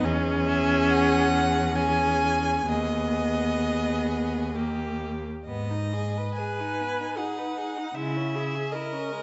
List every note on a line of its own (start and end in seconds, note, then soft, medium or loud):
0.04 2.65 E2 medium
0.04 1.74 C#4 medium
0.04 1.74 G#4 medium
0.47 0.91 E5 medium
0.90 1.77 F#5 loud
1.75 2.67 C#4 medium
1.75 2.67 G#4 medium
1.75 2.70 G#5 loud
2.68 5.23 D#2 medium
2.68 4.52 B3 medium
2.68 4.57 G#4 medium
2.68 5.03 D#5 medium
4.56 5.25 A#3 medium
4.56 5.26 G4 medium
5.45 6.23 G#2 medium
5.45 5.72 B3 soft
5.45 6.32 D#5 medium
5.71 5.95 D#4 soft
5.93 6.19 G#4 medium
6.18 6.41 B4 medium
6.35 7.19 B4 medium
6.35 7.19 G#5 medium
6.39 6.62 G#4 soft
6.61 6.82 D#4 soft
6.81 7.02 B3 medium
7.00 7.20 D#4 soft
7.17 7.97 D#4 medium
7.17 7.40 G#4 soft
7.17 7.96 F#5 medium
7.38 7.59 B4 soft
7.57 7.80 G#4 soft
7.78 7.96 D#4 soft
7.94 8.59 C#3 medium
7.94 8.19 G#3 medium
7.94 8.37 E4 medium
7.94 8.73 E5 medium
8.17 8.38 C#4 soft
8.35 8.57 E4 medium
8.35 8.73 G#4 medium
8.55 8.77 G#4 medium
8.71 8.95 E4 medium
8.71 9.23 A#4 medium
8.71 9.23 D#5 medium
8.93 9.14 C#4 soft
9.12 9.23 G#3 soft